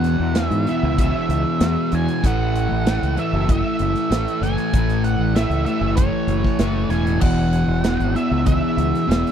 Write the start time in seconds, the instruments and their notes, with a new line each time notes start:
Already playing: fingered electric bass E2, overdriven electric guitar E2 B2 E3, lead electric guitar F#5
0.04 snare, closed hi-hat
0.20 fingered electric bass E2
0.34 overdriven electric guitar E2 B2 E3, snare, closed hi-hat
0.43 lead electric guitar E5
0.51 fingered electric bass G#2, closed hi-hat
0.67 overdriven electric guitar E2 B2 E3, lead electric guitar E5, closed hi-hat
0.83 fingered electric bass C#2
0.98 overdriven electric guitar E2 B2 E3, lead electric guitar E5, kick, closed hi-hat
1.29 fingered electric bass C#2, closed hi-hat
1.61 fingered electric bass E2, overdriven electric guitar E2 B2 E3, snare, closed hi-hat
1.92 fingered electric bass E2, overdriven electric guitar E2 B2 E3, lead electric guitar G#5, closed hi-hat
2.09 closed hi-hat
2.23 fingered electric bass A1, overdriven electric guitar A2 E3 A3, lead electric guitar F#5, kick, closed hi-hat
2.56 closed hi-hat
2.72 fingered electric bass A1
2.86 overdriven electric guitar A2 E3 A3, snare, closed hi-hat
3.03 fingered electric bass C#2, closed hi-hat
3.17 overdriven electric guitar A2 E3 A3, lead electric guitar E5, closed hi-hat
3.33 fingered electric bass F#1
3.49 overdriven electric guitar A2 E3 A3, lead electric guitar E5, kick, closed hi-hat
3.79 fingered electric bass F#1, closed hi-hat
3.96 snare, closed hi-hat
4.11 fingered electric bass A1, overdriven electric guitar A2 E3 A3, snare, closed hi-hat
4.28 closed hi-hat
4.41 fingered electric bass F#1, overdriven electric guitar A2 E3 A3, lead electric guitar G#5, closed hi-hat
4.58 closed hi-hat
4.73 fingered electric bass A1, overdriven electric guitar A2 E3 A3, kick, closed hi-hat
4.90 closed hi-hat
5.04 lead electric guitar F#5, closed hi-hat
5.19 fingered electric bass A1
5.36 overdriven electric guitar A2 E3 A3, lead electric guitar E5, snare, closed hi-hat
5.50 fingered electric bass C#2, closed hi-hat
5.66 overdriven electric guitar A2 E3 A3, lead electric guitar E5, closed hi-hat
5.81 fingered electric bass F#1
5.97 overdriven electric guitar A2 E3 A3, lead electric guitar C#5, kick, closed hi-hat
6.27 fingered electric bass F#1, closed hi-hat
6.44 kick, snare
6.59 fingered electric bass F#1, overdriven electric guitar A2 E3 A3, snare, closed hi-hat
6.89 fingered electric bass E1, overdriven electric guitar A2 E3 A3, lead electric guitar G#5, closed hi-hat
7.07 closed hi-hat
7.21 fingered electric bass E1, overdriven electric guitar E2 B2 E3, lead electric guitar F#5, kick, crash
7.53 closed hi-hat
7.68 fingered electric bass E1
7.84 overdriven electric guitar E2 B2 E3, snare, closed hi-hat
8.00 fingered electric bass G#1, closed hi-hat
8.15 overdriven electric guitar E2 B2 E3, lead electric guitar E5, closed hi-hat
8.31 fingered electric bass C#2
8.46 overdriven electric guitar E2 B2 E3, lead electric guitar E5, kick, closed hi-hat
8.77 fingered electric bass C#2, closed hi-hat
8.95 snare, closed hi-hat
9.08 fingered electric bass E1, overdriven electric guitar E2 B2 E3, closed hi-hat
9.12 snare
9.27 closed hi-hat